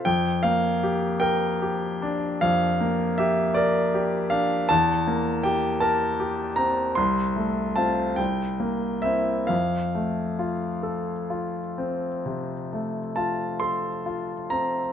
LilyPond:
\new Staff \with { instrumentName = "Grand piano" } { \time 12/8 \key f \major \tempo 4. = 51 << { g''8 f''4 g''4. f''4 e''8 d''4 f''8 | a''4 g''8 a''4 bes''8 c'''4 a''8 g''4 e''8 | f''1 a''8 c'''4 bes''8 | } \\ { f,8 bes8 g'8 bes'8 g'8 d'8 f,8 bes8 g'8 bes'8 g'8 d'8 | e,8 bes8 g'8 bes'8 g'8 c'8 c,8 a8 <c' f'>8 c,8 bes8 <c' e'>8 | f,8 a8 f'8 a'8 f'8 c'8 c8 a8 f'8 a'8 f'8 c'8 | } >> }